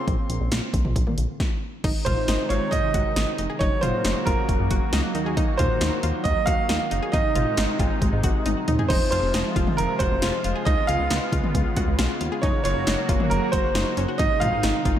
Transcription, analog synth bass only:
0.08 0.17 A#1 loud
0.30 0.39 A#1 medium
0.41 0.50 A#1 loud
0.52 0.61 A#1 loud
0.74 0.83 A#1 loud
0.85 0.94 A#1 medium
0.96 1.05 A#1 loud
1.07 1.16 A#2 medium
1.18 1.27 A#1 loud
1.84 1.93 G#1 loud
2.06 2.15 G#1 medium
2.28 2.37 G#1 loud
2.50 2.59 G#1 loud
2.72 2.81 G#1 loud
2.94 3.03 G#1 medium
3.17 3.26 G#1 loud
3.39 3.48 F1 medium
3.61 3.70 F#1 loud
3.83 3.92 F#1 loud
4.05 4.14 F#1 medium
4.27 4.36 F#1 loud
4.49 4.58 F#1 loud
4.60 4.69 F#2 loud
4.71 4.80 F#1 loud
4.93 5.02 C#2 medium
5.15 5.42 D#2 loud
5.59 5.68 D#2 medium
5.81 5.90 D#2 loud
6.03 6.12 D#2 loud
6.25 6.34 D#2 loud
6.47 6.56 D#2 loud
6.69 6.78 D#2 loud
6.91 7.01 F#1 medium
7.13 7.23 G#1 loud
7.36 7.45 G#1 loud
7.58 7.67 G#1 loud
7.79 7.89 G#1 loud
8.02 8.11 G#1 loud
8.13 8.22 G#2 loud
8.24 8.33 G#1 loud
8.46 8.55 G#1 loud
8.68 8.77 D#2 loud
8.90 8.99 F1 loud
9.12 9.21 F1 loud
9.23 9.32 F1 loud
9.34 9.43 F1 loud
9.56 9.65 F1 loud
9.78 9.87 F1 loud
10.00 10.09 F1 loud
10.11 10.21 F1 loud
10.23 10.32 F1 loud
10.45 10.54 F1 loud
10.67 10.76 C#2 loud
10.89 10.98 C#2 loud
11.00 11.09 C#2 loud
11.11 11.20 C#2 loud
11.32 11.42 C#2 loud
11.55 11.64 C#2 loud
11.77 11.86 C#2 loud
11.88 11.97 C#2 loud
11.99 12.08 B1 loud
12.21 12.30 D#2 loud
12.43 12.52 F#1 loud
12.65 12.74 F#1 loud
12.76 12.85 F#1 loud
12.87 12.96 F#1 loud
13.09 13.18 F#1 loud
13.31 13.40 F#1 loud
13.53 13.62 F#1 loud
13.64 13.73 F#1 medium
13.75 13.84 F#1 loud
13.97 14.06 F#1 loud
14.19 14.29 G#1 loud
14.41 14.51 G#1 loud
14.52 14.62 G#1 medium
14.63 14.73 G#1 loud
14.85 14.95 G#1 loud

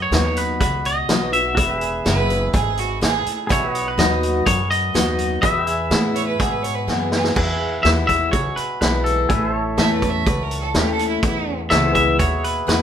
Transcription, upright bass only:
0.00 0.11 F#2 medium
0.11 0.59 D#2 loud
0.60 1.07 C#2 medium
1.09 1.56 B1 medium
1.57 2.04 E1 medium
2.06 2.52 F#1 loud
2.54 3.01 G#1 medium
3.02 3.25 A1 medium
3.26 muted upright bass stroke soft
3.50 3.97 B1 medium
3.98 4.45 D#2 loud
4.47 4.94 F#2 medium
4.95 5.42 D#2 medium
5.43 5.90 E2 medium
5.91 6.38 A2 loud
6.40 6.87 G#2 medium
6.88 7.35 F#2 medium
7.36 7.83 E2 medium
7.85 8.32 D#2 loud
8.33 8.56 C#2 medium
8.57 muted upright bass stroke soft
8.81 9.28 B1 medium
9.30 9.77 A1 medium
9.77 10.25 E2 loud
10.26 10.73 C#2 medium
10.75 11.21 D#2 medium
11.23 11.70 E2 medium
11.71 12.18 C#2 loud
12.20 12.66 D#2 medium
12.68 12.82 E2 medium

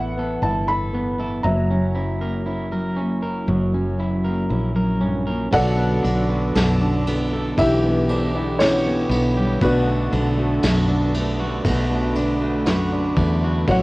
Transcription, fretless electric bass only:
0.00 0.39 A1 medium
0.42 1.40 G1 medium
1.44 3.45 F#1 medium
3.48 4.47 F#1 medium
4.50 5.50 A#1 medium
5.53 6.01 B1 medium
6.04 6.52 B1 medium
6.55 7.54 B1 medium
7.58 9.07 B1 medium
9.10 9.57 B1 medium
9.61 10.09 B1 medium
10.13 10.60 B1 medium
10.64 11.61 B1 medium
11.65 13.13 B1 medium
13.16 13.63 E2 loud
13.67 13.82 A1 loud

